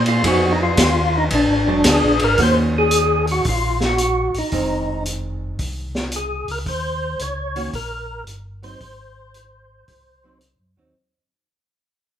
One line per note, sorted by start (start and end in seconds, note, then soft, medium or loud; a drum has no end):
0.00 0.23 A#2 medium
0.06 0.26 F4 medium
0.06 ride soft
0.24 0.76 F2 medium
0.24 0.56 F3 medium
0.24 0.56 B3 medium
0.24 0.57 D#4 medium
0.24 0.53 F#4 medium
0.24 0.57 G#4 medium
0.24 kick soft
0.24 ride medium
0.52 0.61 D#4 medium
0.63 1.16 F4 medium
0.77 1.29 D#2 medium
0.77 kick soft
0.77 snare medium
0.77 hi-hat pedal medium
0.77 ride medium
1.17 1.24 D#4 medium
1.30 1.48 A#1 medium
1.30 kick soft
1.30 ride medium
1.35 2.18 D4 medium
1.48 1.66 G#1 medium
1.66 1.83 F1 medium
1.66 1.83 F#3 medium
1.66 1.83 G#3 medium
1.66 1.84 D4 medium
1.84 2.02 D2 medium
1.84 kick soft
1.84 snare medium
1.84 hi-hat pedal medium
1.84 ride medium
1.90 2.24 G#4 medium
2.02 2.20 A#1 soft
2.19 2.37 G#1 medium
2.19 ride soft
2.24 2.41 A#4 medium
2.38 3.41 D#2 medium
2.38 3.88 D#3 medium
2.38 3.89 A#3 medium
2.38 3.89 C#4 medium
2.38 3.89 F#4 medium
2.38 kick soft
2.38 open hi-hat medium
2.42 2.57 C5 loud
2.78 3.26 G#4 loud
2.91 closed hi-hat medium
3.27 open hi-hat soft
3.32 3.46 F#4 medium
3.45 4.30 A#1 medium
3.45 kick soft
3.45 open hi-hat medium
3.49 3.84 F4 medium
3.80 snare soft
3.86 4.38 F#4 medium
3.98 closed hi-hat medium
4.34 4.43 A#1 soft
4.34 open hi-hat soft
4.38 5.04 D#4 medium
4.52 5.55 F1 medium
4.52 6.02 D#3 medium
4.52 6.02 G#3 medium
4.52 6.03 C4 medium
4.52 kick soft
4.52 open hi-hat soft
5.05 closed hi-hat medium
5.59 6.44 C2 medium
5.59 kick soft
5.59 open hi-hat soft
5.95 snare soft
6.12 closed hi-hat medium
6.16 6.51 G#4 medium
6.48 6.65 C#2 medium
6.48 6.59 A#4 medium
6.48 open hi-hat soft
6.66 7.16 D#2 medium
6.66 7.23 C5 medium
6.66 kick soft
6.66 open hi-hat soft
7.19 7.70 C#2 medium
7.19 7.71 C#5 medium
7.19 closed hi-hat soft
7.56 7.72 D#3 medium
7.56 7.72 A#3 medium
7.56 7.72 C#4 medium
7.56 7.72 F#4 medium
7.56 open hi-hat soft
7.73 8.23 A#1 medium
7.73 8.24 A#4 medium
7.73 kick soft
7.73 open hi-hat medium
8.25 8.76 G1 medium
8.25 closed hi-hat medium
8.63 8.79 F#3 medium
8.63 8.79 C4 medium
8.63 8.80 D#4 medium
8.63 10.38 C5 loud
8.63 open hi-hat soft
8.80 9.84 G#1 medium
8.80 kick soft
8.80 open hi-hat soft
9.34 closed hi-hat medium
9.88 10.56 C2 medium
9.88 kick soft
9.88 open hi-hat soft
10.24 10.40 F#3 medium
10.24 10.41 C4 medium
10.24 10.41 D#4 medium
10.41 closed hi-hat medium
10.59 10.76 F#2 medium
10.77 10.94 D#2 medium
10.77 10.93 F#3 medium
10.77 10.94 C4 medium
10.77 10.94 D#4 medium